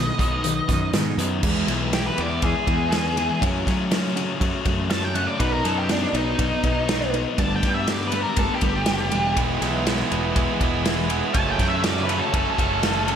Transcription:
Already playing: B1 B2 D#3 B3 B4 D#5
0.18 B1 B2 D#3 F#3 D#4, kick, closed hi-hat
0.43 B2 D#3 B4, closed hi-hat
0.68 F#2 B2 D#3 D#4, kick, snare, closed hi-hat
0.93 G#2 B2 D#3 B3, snare, closed hi-hat
1.17 F#2 B2 D#3 F#3 B4, closed hi-hat
1.43 E2 E3 G#3 B3 E4, kick, crash
1.67 B1 E2 E3 G#3 B3 E4, snare, ride
1.92 E2 E3 G#3 B3 E4 G4, snare, ride
2.07 B4
2.17 E2 E3 G#3 B3 E4 D5, ride
2.42 E2 E3 G#3 B3 E4 G#4, kick, ride
2.66 E2 E3 G#3 B3 E4, kick, ride
2.90 E2 E3 G#3 B3 E4, snare, ride
3.16 E2 E3 G#3 B3 E4, ride
3.42 F#2 C#3 F#3 A3 C#4 E4, kick, ride
3.66 F#2 C#3 F#3 A3 C#4, kick, snare, ride
3.90 F#2 C#3 F#3 A3 C#4, snare, ride
4.16 F#2 C#3 F#3 A3 C#4, ride
4.41 F#2 C#3 F#3 A3 C#4, kick, ride
4.65 F#2 C#3 F#3 A3 C#4, kick, ride
4.90 F#2 C#3 F#3 A3 C#4 A5, snare, ride
5.04 G5
5.15 F#2 C#3 F#3 A3 C#4 F#5, ride
5.27 D5
5.39 B1 B2 F#3 B3 D#4 F#4 B4, kick, ride
5.52 A#4
5.64 F#2 B2 F#3 B3 D#4 A4, snare, ride
5.78 G4
5.89 B2 F#3 B3 D4 D#4, snare, ride
6.13 B1 B2 F#3 B3 D#4, ride
6.39 B1 B2 F#3 B3 D#4, kick, ride
6.64 B1 B2 F#3 B3 D#4, kick, ride
6.89 B2 F#3 B3 D#4, snare, ride
7.14 B2 F#3 B3 D#4, ride
7.38 G1 G2 D3 G3 A3 B3 D4 A5, kick, ride
7.56 G5
7.63 G2 D3 G3 A3 B3 D4, kick, snare, ride
7.74 E5
7.88 G2 D3 G3 A3 B3 D4 D5, snare, ride
8.07 B4
8.12 G2 D3 G3 A3 B3 D4, ride
8.22 A#4
8.36 G1 G2 D3 G3 A3 B3 D4 A4, kick, ride
8.54 G4
8.61 G1 G2 D3 G3 A3 B3 D4, kick, ride
8.86 F#1 G2 D3 G3 A3 B3 D4, snare, ride
9.11 E1 G2 D3 G3 A3 B3 D4, ride
9.36 E1 E3 G#3 B3 E4, kick, ride
9.61 B1 E3 G#3 B3 E4, snare, ride
9.85 E3 G#3 B3 E4, snare, ride
10.10 E1 E3 G#3 B3 E4, ride
10.35 E1 E3 G#3 B3 E4, kick, ride
10.60 E1 E3 G#3 B3 E4, kick, ride
10.84 E3 G#3 B3 E4, snare, ride
11.10 E3 G#3 B3 E4, ride
11.33 F#1 F#2 C#3 F#3 A3 C#4 A5, kick, ride
11.51 G5
11.58 F#2 C#3 F#3 A3 C#4, kick, snare, ride
11.68 E5
11.83 F#2 C#3 F#3 A3 C#4 D5, snare, ride
12.03 B4
12.08 F#2 C#3 F#3 A3 C#4, ride
12.19 A4
12.33 F#1 F#2 C#3 F#3 A3 C#4 A4, kick, ride
12.51 A4
12.58 F#1 F#2 C#3 F#3 A3 C#4, kick, ride
12.83 F#2 C#3 F#3 A3 C#4, snare, ride
13.07 F#2 C#3 F#3 A3 C#4, ride

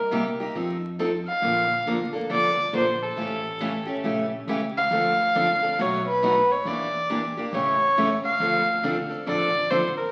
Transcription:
Already playing: C2 A#4
0.11 C3 G3 A#3 D#4 G4
0.40 A#3 D#4 G4
0.55 F2 F3 C4 D#4 A4
0.99 F3 C4 D#4 A4
1.27 F5
1.42 A#1 D3 F3 A#3 D4 A4
1.86 D2 D3 F3 A#3 D4 A4
2.13 A#3 D4 A4
2.29 C2 D3 F3 A#3 D4 A4 D5
2.73 A#1 D3 F3 A#3 D4 A4 C5
3.02 A4
3.17 A1 C#3 E3 A3 C#4 G4
3.60 C#3 E3 A3 C#4 G4
3.86 A3 C#4 G4
4.04 A#1 C#3 E3 A3 C#4 G4
4.47 C#2 C#3 E3 A3 C#4 G4
4.77 F5
4.91 D2 D3 F3 C4 D4 A4
5.35 D3 F3 C4 D4 A4
5.62 C4 D4 A4
5.79 B1 B2 F#3 A3 D#4 F#4 C#5
6.08 B4
6.22 B2 F#3 A3 D#4 F#4
6.52 C#5
6.65 E2 E3 A#3 D4 G4 D5
7.10 E3 A#3 D4 G4
7.37 A#3 D4 G4
7.53 A1 C#3 E3 A3 C#4 G4 C#5
7.97 C#3 E3 A3 C#4 G4
8.25 F5
8.40 D2 D3 F3 C4 D4 A4
8.83 D3 F3 C4 D4 A4
9.10 C4 D4 A4
9.26 A1 D3 F3 C4 D4 A4 D5
9.70 D3 F3 C4 D4 A4 C5
9.97 A#4

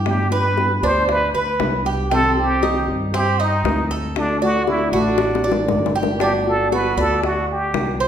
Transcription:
Already playing: G2 G4
0.06 D3 G3 B3 D4 G4, high bongo
0.31 G3 B3 D4 G4 B4
0.57 G3 B3 D4 G4, high bongo
0.82 D2 G3 B3 D4 G4 C5, high bongo
1.08 B4, muted nylon-string guitar stroke, high bongo
1.34 D2 B4, high bongo
1.60 C2 G3 B3 D4 G4, high bongo, low bongo
1.85 G4, high bongo
2.11 C3 D#3 G3 C4 G4 A4, high bongo
2.37 D#3 G3 C4 G4
2.63 D#3 G3 C4 D#4 G4, high bongo
2.87 G2 D#3 G3 C4 G4
3.13 C4 G4, muted nylon-string guitar stroke, high bongo
3.40 D#4
3.64 D2 G3 C4 G4, high bongo, low bongo
3.91 A4
4.16 D3 A3 D4 F#4, high bongo
4.42 A3 D4 F#4 D5
4.68 D3 A3 D4 E4 F#4, high bongo
4.92 A1 A3 D4 F#4, high bongo
5.18 muted nylon-string guitar stroke, high bongo
5.35 high bongo
5.44 D5
5.52 low bongo
5.68 G1 D3 A3 D4 F#4, low bongo
5.86 low bongo
5.95 G4
6.03 low bongo
6.20 G3 B3 D4 F#4 G4, high bongo
6.47 B3 F#4 A4
6.72 G3 B3 F#4 B4, high bongo
6.97 D2 B3 F#4 A4 D5
7.23 F#4, muted nylon-string guitar stroke, high bongo
7.51 G4
7.74 C2 G3 B3 F#4, high bongo, low bongo
8.00 C5

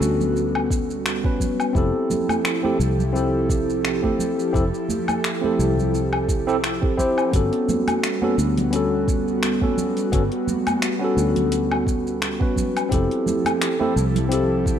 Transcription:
Already playing: G3 B3 C#4 F#4 A4
0.01 D2, shaker
0.21 low conga, shaker
0.36 shaker
0.55 low woodblock
0.70 kick, shaker
0.91 shaker
1.06 finger snap, shaker
1.24 B3 C#4 F#4 B4, kick
1.40 kick, low conga, shaker
1.60 low woodblock, shaker
1.73 F1 F3 C4 E4 G4 A4, kick, shaker
1.78 A4
2.10 high conga, low conga, shaker
2.29 high conga, low woodblock, shaker
2.45 finger snap, shaker
2.63 C4 E4 G4 A4, high conga
2.79 C2, shaker
2.99 low conga, shaker
3.12 C4 E4 G4, shaker
3.17 A4
3.49 kick, shaker
3.70 shaker
3.85 finger snap, shaker
4.02 C4 E4 G4 A4, kick, high conga
4.19 low conga, shaker
4.39 shaker
4.53 F1 C4 E4 G4 A4, kick, shaker
4.74 shaker
4.89 high conga, low conga, shaker
5.08 high conga, low woodblock, shaker
5.24 finger snap, shaker
5.41 C4 E4 G4, high conga
5.46 A4
5.59 C2, shaker
5.78 low conga, shaker
5.95 shaker
6.13 low woodblock
6.29 kick, shaker
6.47 C4 E4 G4 A4, shaker
6.64 finger snap, shaker
6.82 C4 E4 G4 A4, kick
6.97 C4 E4 G4 C5, kick, low conga, shaker
7.18 low woodblock, shaker
7.31 G1 G3 B3 C#4 F#4, kick, closed hi-hat, shaker
7.36 A4
7.53 closed hi-hat
7.69 high conga, low conga, shaker
7.88 closed hi-hat, high conga, low woodblock, shaker
8.04 finger snap, closed hi-hat, shaker
8.22 B3 C#4 F#4 A4, high conga
8.38 D2, shaker
8.57 closed hi-hat, low conga, shaker
8.71 B3 C#4 F#4, closed hi-hat, shaker
8.76 A4
9.08 kick, shaker
9.28 shaker
9.43 finger snap, closed hi-hat, shaker
9.61 B3 C#4 F#4 A4, kick, high conga
9.78 low conga, shaker
9.97 closed hi-hat, shaker
10.12 G1 B3 C#4 F#4 A4, kick, closed hi-hat, shaker
10.32 closed hi-hat
10.47 high conga, low conga, shaker
10.67 closed hi-hat, high conga, low woodblock, shaker
10.82 finger snap, closed hi-hat, shaker
10.99 B3 C#4 F#4
11.04 A4
11.17 D2, shaker
11.36 closed hi-hat, low conga, shaker
11.52 closed hi-hat, shaker
11.71 low woodblock
11.87 kick, shaker
12.07 shaker
12.22 finger snap, closed hi-hat, shaker
12.40 B3 C#4 F#4 B4, kick
12.56 kick, low conga, shaker
12.77 closed hi-hat, low woodblock, shaker
12.89 F1 F3 C4 E4 G4 A4, kick, closed hi-hat, shaker
12.94 A4
13.11 closed hi-hat
13.26 high conga, low conga, shaker
13.45 closed hi-hat, high conga, low woodblock, shaker
13.62 finger snap, closed hi-hat, shaker
13.80 C4 E4 G4 A4, high conga
13.96 C2, shaker
14.15 closed hi-hat, low conga, shaker
14.29 C4 E4 G4, closed hi-hat, shaker
14.33 A4
14.66 kick, shaker

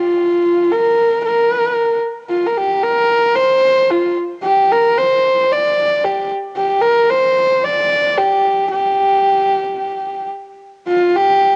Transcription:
Already playing: F4
0.72 A#4
1.25 A#4
2.29 F4
2.46 A#4
2.58 G4
2.83 A#4
3.35 C5
3.91 F4
4.43 G4
4.72 A#4
4.98 C5
5.52 D5
6.04 G4
6.57 G4
6.82 A#4
7.10 C5
7.64 D5
8.18 G4
8.71 G4
10.88 F4
11.16 G4

